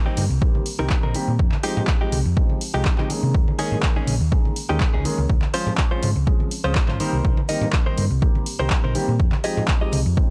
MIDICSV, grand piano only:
0, 0, Header, 1, 2, 480
1, 0, Start_track
1, 0, Key_signature, -4, "minor"
1, 0, Tempo, 487805
1, 1372, Time_signature, 4, 2, 24, 8
1, 10137, End_track
2, 0, Start_track
2, 0, Title_t, "Grand piano"
2, 0, Program_c, 0, 0
2, 54, Note_on_c, 0, 51, 73
2, 56, Note_on_c, 0, 55, 67
2, 58, Note_on_c, 0, 58, 64
2, 61, Note_on_c, 0, 60, 64
2, 62, Note_on_c, 0, 67, 80
2, 176, Note_off_c, 0, 51, 0
2, 176, Note_off_c, 0, 55, 0
2, 177, Note_off_c, 0, 58, 0
2, 179, Note_off_c, 0, 60, 0
2, 179, Note_off_c, 0, 67, 0
2, 408, Note_on_c, 0, 51, 75
2, 411, Note_on_c, 0, 55, 70
2, 412, Note_on_c, 0, 58, 69
2, 414, Note_on_c, 0, 60, 68
2, 416, Note_on_c, 0, 67, 84
2, 614, Note_off_c, 0, 51, 0
2, 615, Note_off_c, 0, 55, 0
2, 616, Note_off_c, 0, 58, 0
2, 617, Note_off_c, 0, 60, 0
2, 618, Note_off_c, 0, 67, 0
2, 776, Note_on_c, 0, 51, 85
2, 777, Note_on_c, 0, 55, 81
2, 780, Note_on_c, 0, 58, 76
2, 782, Note_on_c, 0, 60, 78
2, 785, Note_on_c, 0, 67, 93
2, 977, Note_off_c, 0, 51, 0
2, 978, Note_off_c, 0, 55, 0
2, 979, Note_off_c, 0, 58, 0
2, 980, Note_off_c, 0, 60, 0
2, 981, Note_off_c, 0, 67, 0
2, 1130, Note_on_c, 0, 51, 94
2, 1130, Note_on_c, 0, 55, 88
2, 1134, Note_on_c, 0, 58, 86
2, 1134, Note_on_c, 0, 60, 85
2, 1136, Note_on_c, 0, 67, 102
2, 1264, Note_off_c, 0, 51, 0
2, 1264, Note_off_c, 0, 55, 0
2, 1266, Note_off_c, 0, 58, 0
2, 1266, Note_off_c, 0, 60, 0
2, 1267, Note_off_c, 0, 67, 0
2, 1607, Note_on_c, 0, 53, 75
2, 1610, Note_on_c, 0, 56, 67
2, 1610, Note_on_c, 0, 60, 72
2, 1613, Note_on_c, 0, 63, 67
2, 1615, Note_on_c, 0, 67, 84
2, 1946, Note_off_c, 0, 53, 0
2, 1947, Note_off_c, 0, 56, 0
2, 1948, Note_off_c, 0, 60, 0
2, 1949, Note_off_c, 0, 63, 0
2, 1950, Note_off_c, 0, 67, 0
2, 1973, Note_on_c, 0, 53, 69
2, 1974, Note_on_c, 0, 56, 64
2, 1978, Note_on_c, 0, 60, 64
2, 1979, Note_on_c, 0, 63, 68
2, 1982, Note_on_c, 0, 67, 79
2, 2095, Note_off_c, 0, 53, 0
2, 2096, Note_off_c, 0, 56, 0
2, 2097, Note_off_c, 0, 60, 0
2, 2098, Note_off_c, 0, 63, 0
2, 2099, Note_off_c, 0, 67, 0
2, 2325, Note_on_c, 0, 53, 76
2, 2328, Note_on_c, 0, 56, 67
2, 2330, Note_on_c, 0, 60, 66
2, 2332, Note_on_c, 0, 63, 68
2, 2334, Note_on_c, 0, 67, 84
2, 2533, Note_off_c, 0, 53, 0
2, 2534, Note_off_c, 0, 56, 0
2, 2535, Note_off_c, 0, 60, 0
2, 2536, Note_off_c, 0, 63, 0
2, 2537, Note_off_c, 0, 67, 0
2, 2692, Note_on_c, 0, 53, 81
2, 2694, Note_on_c, 0, 56, 74
2, 2696, Note_on_c, 0, 60, 73
2, 2699, Note_on_c, 0, 63, 75
2, 2700, Note_on_c, 0, 67, 93
2, 2905, Note_off_c, 0, 53, 0
2, 2906, Note_off_c, 0, 56, 0
2, 2907, Note_off_c, 0, 60, 0
2, 2908, Note_off_c, 0, 63, 0
2, 2909, Note_off_c, 0, 67, 0
2, 2932, Note_on_c, 0, 53, 72
2, 2935, Note_on_c, 0, 56, 67
2, 2936, Note_on_c, 0, 60, 68
2, 2939, Note_on_c, 0, 63, 68
2, 2940, Note_on_c, 0, 67, 83
2, 3021, Note_off_c, 0, 53, 0
2, 3023, Note_off_c, 0, 56, 0
2, 3023, Note_off_c, 0, 60, 0
2, 3024, Note_off_c, 0, 63, 0
2, 3025, Note_off_c, 0, 67, 0
2, 3045, Note_on_c, 0, 51, 74
2, 3047, Note_on_c, 0, 56, 73
2, 3049, Note_on_c, 0, 58, 71
2, 3052, Note_on_c, 0, 61, 71
2, 3053, Note_on_c, 0, 68, 82
2, 3501, Note_off_c, 0, 51, 0
2, 3502, Note_off_c, 0, 56, 0
2, 3503, Note_off_c, 0, 58, 0
2, 3504, Note_off_c, 0, 61, 0
2, 3505, Note_off_c, 0, 68, 0
2, 3524, Note_on_c, 0, 51, 78
2, 3526, Note_on_c, 0, 56, 69
2, 3528, Note_on_c, 0, 58, 68
2, 3530, Note_on_c, 0, 61, 69
2, 3532, Note_on_c, 0, 68, 83
2, 3865, Note_off_c, 0, 51, 0
2, 3866, Note_off_c, 0, 56, 0
2, 3866, Note_off_c, 0, 58, 0
2, 3867, Note_off_c, 0, 61, 0
2, 3868, Note_off_c, 0, 68, 0
2, 3893, Note_on_c, 0, 51, 73
2, 3894, Note_on_c, 0, 56, 64
2, 3896, Note_on_c, 0, 58, 65
2, 3898, Note_on_c, 0, 61, 68
2, 3901, Note_on_c, 0, 68, 78
2, 4015, Note_off_c, 0, 51, 0
2, 4016, Note_off_c, 0, 56, 0
2, 4017, Note_off_c, 0, 58, 0
2, 4018, Note_off_c, 0, 61, 0
2, 4019, Note_off_c, 0, 68, 0
2, 4244, Note_on_c, 0, 51, 76
2, 4247, Note_on_c, 0, 56, 71
2, 4248, Note_on_c, 0, 58, 68
2, 4250, Note_on_c, 0, 61, 70
2, 4252, Note_on_c, 0, 68, 82
2, 4452, Note_off_c, 0, 51, 0
2, 4453, Note_off_c, 0, 56, 0
2, 4454, Note_off_c, 0, 58, 0
2, 4455, Note_off_c, 0, 61, 0
2, 4456, Note_off_c, 0, 68, 0
2, 4614, Note_on_c, 0, 51, 79
2, 4615, Note_on_c, 0, 56, 75
2, 4616, Note_on_c, 0, 58, 76
2, 4619, Note_on_c, 0, 61, 78
2, 4621, Note_on_c, 0, 68, 89
2, 4816, Note_off_c, 0, 51, 0
2, 4816, Note_off_c, 0, 56, 0
2, 4817, Note_off_c, 0, 58, 0
2, 4818, Note_off_c, 0, 61, 0
2, 4819, Note_off_c, 0, 68, 0
2, 4966, Note_on_c, 0, 51, 95
2, 4968, Note_on_c, 0, 56, 91
2, 4969, Note_on_c, 0, 58, 84
2, 4972, Note_on_c, 0, 61, 91
2, 4974, Note_on_c, 0, 68, 106
2, 5102, Note_off_c, 0, 51, 0
2, 5103, Note_off_c, 0, 56, 0
2, 5104, Note_off_c, 0, 58, 0
2, 5105, Note_off_c, 0, 61, 0
2, 5106, Note_off_c, 0, 68, 0
2, 5446, Note_on_c, 0, 53, 74
2, 5448, Note_on_c, 0, 56, 72
2, 5450, Note_on_c, 0, 72, 68
2, 5452, Note_on_c, 0, 61, 72
2, 5454, Note_on_c, 0, 68, 80
2, 5786, Note_off_c, 0, 53, 0
2, 5787, Note_off_c, 0, 56, 0
2, 5788, Note_off_c, 0, 61, 0
2, 5788, Note_off_c, 0, 72, 0
2, 5790, Note_off_c, 0, 68, 0
2, 5814, Note_on_c, 0, 53, 74
2, 5817, Note_on_c, 0, 56, 68
2, 5818, Note_on_c, 0, 60, 68
2, 5821, Note_on_c, 0, 61, 67
2, 5823, Note_on_c, 0, 68, 79
2, 5936, Note_off_c, 0, 53, 0
2, 5937, Note_off_c, 0, 56, 0
2, 5938, Note_off_c, 0, 60, 0
2, 5939, Note_off_c, 0, 61, 0
2, 5940, Note_off_c, 0, 68, 0
2, 6165, Note_on_c, 0, 53, 78
2, 6167, Note_on_c, 0, 56, 70
2, 6169, Note_on_c, 0, 60, 67
2, 6172, Note_on_c, 0, 61, 70
2, 6174, Note_on_c, 0, 68, 81
2, 6372, Note_off_c, 0, 53, 0
2, 6373, Note_off_c, 0, 56, 0
2, 6374, Note_off_c, 0, 60, 0
2, 6376, Note_off_c, 0, 61, 0
2, 6377, Note_off_c, 0, 68, 0
2, 6535, Note_on_c, 0, 53, 88
2, 6537, Note_on_c, 0, 56, 76
2, 6539, Note_on_c, 0, 60, 81
2, 6541, Note_on_c, 0, 61, 77
2, 6543, Note_on_c, 0, 68, 90
2, 6736, Note_off_c, 0, 53, 0
2, 6737, Note_off_c, 0, 56, 0
2, 6739, Note_off_c, 0, 60, 0
2, 6739, Note_off_c, 0, 61, 0
2, 6741, Note_off_c, 0, 68, 0
2, 6888, Note_on_c, 0, 51, 95
2, 6890, Note_on_c, 0, 55, 89
2, 6892, Note_on_c, 0, 58, 92
2, 6894, Note_on_c, 0, 60, 91
2, 6896, Note_on_c, 0, 67, 107
2, 7023, Note_off_c, 0, 51, 0
2, 7024, Note_off_c, 0, 55, 0
2, 7025, Note_off_c, 0, 58, 0
2, 7026, Note_off_c, 0, 60, 0
2, 7027, Note_off_c, 0, 67, 0
2, 7368, Note_on_c, 0, 51, 75
2, 7370, Note_on_c, 0, 55, 69
2, 7373, Note_on_c, 0, 58, 71
2, 7374, Note_on_c, 0, 60, 72
2, 7376, Note_on_c, 0, 67, 87
2, 7707, Note_off_c, 0, 51, 0
2, 7708, Note_off_c, 0, 55, 0
2, 7709, Note_off_c, 0, 58, 0
2, 7709, Note_off_c, 0, 60, 0
2, 7711, Note_off_c, 0, 67, 0
2, 7734, Note_on_c, 0, 51, 77
2, 7736, Note_on_c, 0, 55, 68
2, 7738, Note_on_c, 0, 58, 69
2, 7739, Note_on_c, 0, 60, 66
2, 7741, Note_on_c, 0, 67, 79
2, 7855, Note_off_c, 0, 51, 0
2, 7856, Note_off_c, 0, 55, 0
2, 7858, Note_off_c, 0, 58, 0
2, 7858, Note_off_c, 0, 60, 0
2, 7859, Note_off_c, 0, 67, 0
2, 8084, Note_on_c, 0, 51, 72
2, 8087, Note_on_c, 0, 55, 72
2, 8089, Note_on_c, 0, 58, 74
2, 8090, Note_on_c, 0, 60, 68
2, 8093, Note_on_c, 0, 67, 85
2, 8292, Note_off_c, 0, 51, 0
2, 8293, Note_off_c, 0, 55, 0
2, 8294, Note_off_c, 0, 58, 0
2, 8295, Note_off_c, 0, 60, 0
2, 8296, Note_off_c, 0, 67, 0
2, 8453, Note_on_c, 0, 51, 84
2, 8456, Note_on_c, 0, 55, 78
2, 8458, Note_on_c, 0, 58, 79
2, 8459, Note_on_c, 0, 60, 78
2, 8462, Note_on_c, 0, 67, 93
2, 8655, Note_off_c, 0, 51, 0
2, 8657, Note_off_c, 0, 55, 0
2, 8658, Note_off_c, 0, 58, 0
2, 8659, Note_off_c, 0, 60, 0
2, 8660, Note_off_c, 0, 67, 0
2, 8805, Note_on_c, 0, 51, 99
2, 8807, Note_on_c, 0, 55, 91
2, 8808, Note_on_c, 0, 58, 89
2, 8811, Note_on_c, 0, 60, 94
2, 8812, Note_on_c, 0, 67, 108
2, 8941, Note_off_c, 0, 51, 0
2, 8942, Note_off_c, 0, 55, 0
2, 8943, Note_off_c, 0, 58, 0
2, 8944, Note_off_c, 0, 60, 0
2, 8945, Note_off_c, 0, 67, 0
2, 9285, Note_on_c, 0, 53, 76
2, 9287, Note_on_c, 0, 56, 70
2, 9287, Note_on_c, 0, 60, 71
2, 9291, Note_on_c, 0, 63, 69
2, 9293, Note_on_c, 0, 79, 81
2, 9625, Note_off_c, 0, 53, 0
2, 9626, Note_off_c, 0, 56, 0
2, 9626, Note_off_c, 0, 60, 0
2, 9628, Note_off_c, 0, 63, 0
2, 9629, Note_off_c, 0, 79, 0
2, 9654, Note_on_c, 0, 53, 75
2, 9655, Note_on_c, 0, 56, 68
2, 9658, Note_on_c, 0, 60, 65
2, 9660, Note_on_c, 0, 63, 69
2, 9662, Note_on_c, 0, 67, 81
2, 9775, Note_off_c, 0, 53, 0
2, 9776, Note_off_c, 0, 56, 0
2, 9777, Note_off_c, 0, 60, 0
2, 9779, Note_off_c, 0, 63, 0
2, 9779, Note_off_c, 0, 67, 0
2, 10005, Note_on_c, 0, 53, 74
2, 10007, Note_on_c, 0, 56, 69
2, 10010, Note_on_c, 0, 60, 73
2, 10010, Note_on_c, 0, 63, 69
2, 10013, Note_on_c, 0, 67, 81
2, 10137, Note_off_c, 0, 53, 0
2, 10137, Note_off_c, 0, 56, 0
2, 10137, Note_off_c, 0, 60, 0
2, 10137, Note_off_c, 0, 63, 0
2, 10137, Note_off_c, 0, 67, 0
2, 10137, End_track
0, 0, End_of_file